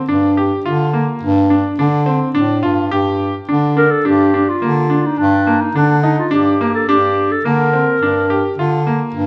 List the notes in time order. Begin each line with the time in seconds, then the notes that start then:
0.09 G2 D4
0.37 G4
0.66 D3 F4
0.93 A#3
1.23 G2
1.50 D4
1.79 D3 D4
2.06 C4
2.35 A2 D4
2.63 G2 F4
2.91 G2 G4
3.49 D3 D4
3.77 D4 A#4
3.91 A4
4.05 G2 D4 G4
4.34 D4
4.49 F4
4.62 D3 A#3
4.90 D4
5.06 D#4
5.18 G2 D4
5.47 A#3
5.61 D#4
5.75 D3 D4
6.03 D#4
6.18 F4
6.31 G2 D4 G4
6.61 A#3
6.75 A4
6.89 G2 D4 G4
7.32 A4
7.45 D3 A#3 A#4
7.73 C4
8.02 G2 D4
8.30 G4
8.58 D3 F4
8.87 A#3
9.14 G2